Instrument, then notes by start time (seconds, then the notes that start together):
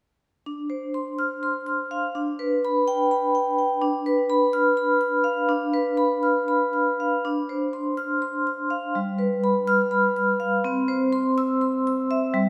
vibraphone
0.46 D4
0.70 C5
0.94 C6
1.19 F6
1.43 C6
1.66 F6
1.91 F5
2.15 D4
2.39 B4
2.65 B5
2.88 G5
3.11 B5
3.35 G5
3.58 G5
3.82 D4
4.06 B4
4.30 B5
4.53 F6
4.77 B5
5.01 F6
5.24 F5
5.49 D4
5.74 B4
5.97 B5
6.23 F6
6.48 B5
6.73 F6
7.00 F5
7.25 D4
7.49 C5
7.73 C6
7.97 F6
8.22 C6
8.47 F6
8.70 F5
8.95 G3
9.19 B4
9.44 B5
9.67 F6
9.91 B5
10.16 F6
10.40 F5
10.64 C4
10.88 C5
11.13 C6
11.38 E6
11.61 C6
11.87 E6
12.11 E5
12.34 G3